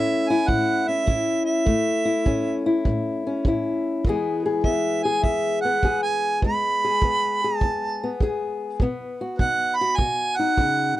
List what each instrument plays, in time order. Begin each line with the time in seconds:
Already playing: steel-string acoustic guitar A2 A3 C#4 E4, harmonica E5
0.29 steel-string acoustic guitar E4, harmonica G#5
0.48 steel-string acoustic guitar A2, harmonica F#5, kick
0.88 steel-string acoustic guitar C#4, harmonica E5
1.06 steel-string acoustic guitar A2 E4, kick
1.45 harmonica E5
1.66 steel-string acoustic guitar A2 A3, kick
2.05 steel-string acoustic guitar E4
2.25 steel-string acoustic guitar A2 C#4, kick
2.66 steel-string acoustic guitar E4
2.85 steel-string acoustic guitar A2, kick
3.27 steel-string acoustic guitar C#4
3.45 steel-string acoustic guitar A2 E4, kick
4.05 steel-string acoustic guitar E2 E3 G#3, kick
4.09 steel-string acoustic guitar B3 G#4
4.46 steel-string acoustic guitar G#4
4.64 steel-string acoustic guitar E2 B3, harmonica E5, kick
5.03 steel-string acoustic guitar G#4, harmonica G#5
5.23 steel-string acoustic guitar E2, harmonica E5, kick
5.61 steel-string acoustic guitar B3, harmonica F#5
5.83 steel-string acoustic guitar E2 G#4, kick
6.03 harmonica G#5
6.42 steel-string acoustic guitar E2 G#3, harmonica B5, kick
6.84 steel-string acoustic guitar G#4
7.02 steel-string acoustic guitar E2 B3, kick
7.44 steel-string acoustic guitar G#4
7.57 harmonica A5, kick
7.63 steel-string acoustic guitar E2
8.04 steel-string acoustic guitar B3
8.20 steel-string acoustic guitar E2 G#4, kick
8.80 steel-string acoustic guitar B2 B3, kick
9.21 steel-string acoustic guitar F#4
9.38 steel-string acoustic guitar B2 D#4, harmonica F#5, kick
9.76 harmonica B5
9.81 steel-string acoustic guitar F#4
9.96 steel-string acoustic guitar B2, harmonica G#5, kick
10.37 steel-string acoustic guitar D#4, harmonica F#5
10.57 steel-string acoustic guitar C#3, kick
10.96 harmonica F#5